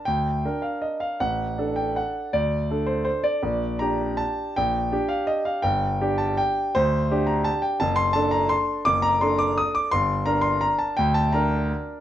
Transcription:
\new Staff \with { instrumentName = "Grand piano" } { \time 3/4 \key g \minor \tempo 4 = 166 << { g''4. f''8 ees''8 f''8 | fis''4. g''8 fis''4 | d''4. c''8 c''8 d''8~ | d''4 bes''4 a''4 |
g''4. f''8 ees''8 f''8 | g''4. a''8 g''4 | c''4. bes''8 a''8 g''8 | a''8 c'''8 a''8 bes''8 c'''4 |
d'''8 bes''8 c'''8 d'''8 ees'''8 d'''8 | c'''4 bes''8 c'''8 bes''8 a''8 | g''8 a''8 bes''8 r4. | } \\ { d,4 <d' bes'>2 | a,,4 <d' a'>2 | d,4 <d' a'>2 | bes,,4 <d' g'>2 |
bes,,4 <d' g'>2 | g,,4 <d' g'>2 | d,4 <d' g'>2 | fis,,4 <d' a'>2 |
fis,,4 <d' a'>2 | g,,4 <d' bes'>2 | d,4 <d' bes'>2 | } >> }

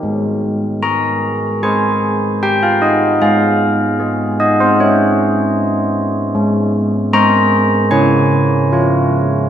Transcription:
\new Staff \with { instrumentName = "Church bells" } { \time 4/4 \key aes \major \tempo 4 = 76 << { r4 bes''4 aes''4 g''16 f''16 ees''8 | f''4. ees''16 c''16 des''2 | r4 bes''4 aes''2 | } \\ { aes4 aes'4 <aes' c''>2 | aes4 aes'4 aes'2 | aes4 <aes' c''>4 des'4 <f' des''>4 | } >> }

